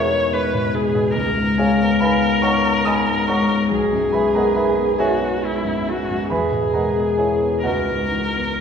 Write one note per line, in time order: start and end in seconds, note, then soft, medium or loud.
0.00 1.12 E2 soft
0.00 0.54 B2 soft
0.00 0.33 G#3 soft
0.00 0.12 B3 soft
0.00 1.19 D#4 soft
0.00 1.19 F#4 medium
0.00 1.19 G#4 medium
0.00 0.70 A#4 medium
0.00 1.20 B4 soft
0.00 0.35 C#5 medium
0.00 1.19 C#5 medium
0.00 1.19 D#5 soft
0.00 1.19 E5 medium
0.00 1.19 F#5 medium
0.00 1.19 G#5 medium
0.12 0.45 B3 soft
0.33 0.66 G#3 soft
0.33 0.76 B4 medium
0.54 0.88 B2 soft
0.75 1.08 G#3 soft
0.75 1.16 G#4 medium
0.95 1.16 B2 soft
1.16 3.67 C#2 soft
1.16 3.67 A#4 medium
1.38 1.71 G#2 soft
1.58 1.92 G#3 soft
1.58 1.98 G#4 soft
1.58 1.98 C#5 medium
1.58 1.98 F5 soft
1.58 2.00 G#5 medium
1.80 2.13 B3 soft
2.00 2.35 D#4 soft
2.00 2.40 B4 medium
2.00 2.40 F5 soft
2.00 2.41 G#5 medium
2.00 2.43 B5 medium
2.22 2.56 B3 soft
2.42 2.77 D#4 soft
2.42 2.83 C#5 medium
2.42 2.83 F#5 medium
2.42 2.83 A#5 medium
2.42 2.85 C#6 medium
2.64 2.98 B3 soft
2.85 3.20 G#3 soft
2.85 3.26 D#5 medium
2.85 3.26 G#5 medium
2.85 3.26 B5 medium
2.85 3.28 D#6 medium
3.08 3.41 G#2 soft
3.28 3.63 G#3 soft
3.28 4.10 C#5 medium
3.28 4.10 F#5 medium
3.28 4.10 A#5 medium
3.28 4.13 C#6 medium
3.50 3.71 G#2 soft
3.71 6.27 B1 soft
3.71 5.01 G#4 medium
3.93 4.27 F#2 soft
4.13 4.47 G#3 soft
4.13 4.33 B4 soft
4.13 4.33 E5 soft
4.13 4.33 G#5 soft
4.13 4.34 B5 medium
4.35 4.69 B3 soft
4.35 4.55 A#4 soft
4.35 4.55 D#5 soft
4.35 4.55 F#5 soft
4.35 4.56 A#5 medium
4.55 4.90 D#4 soft
4.55 4.96 B4 soft
4.55 4.96 E5 soft
4.55 4.96 G#5 soft
4.55 4.99 B5 medium
4.77 5.12 B3 soft
4.98 5.34 D#4 soft
4.98 5.46 F#4 soft
4.98 6.27 G#4 medium
4.98 6.27 C#5 medium
4.98 6.27 E5 medium
4.98 6.30 G#5 medium
5.21 5.57 B3 soft
5.43 5.78 G#3 soft
5.43 5.90 E4 soft
5.65 6.00 F#2 soft
5.87 6.22 G#3 soft
5.87 6.31 F#4 soft
6.09 6.30 F#2 soft
6.30 7.60 E2 soft
6.30 7.62 G#4 medium
6.30 6.71 B4 medium
6.30 6.71 E5 soft
6.30 6.71 G#5 soft
6.30 6.74 B5 medium
6.52 6.87 B2 soft
6.74 7.10 G#3 soft
6.74 7.15 A#4 soft
6.74 7.16 D#5 soft
6.74 7.15 F#5 soft
6.74 7.18 A#5 medium
6.96 7.32 B3 soft
7.17 7.55 E4 soft
7.17 7.61 G#4 soft
7.17 7.61 C#5 soft
7.17 7.61 E5 soft
7.17 7.64 G#5 medium
7.42 7.64 B3 soft
7.63 8.61 C#2 soft
7.63 8.56 F#4 soft
7.63 8.61 A#4 medium
7.63 8.56 B4 soft
7.63 8.56 D#5 soft
7.63 8.59 F#5 medium
7.89 8.26 G#2 soft
8.12 8.50 E3 soft
8.36 8.61 B3 soft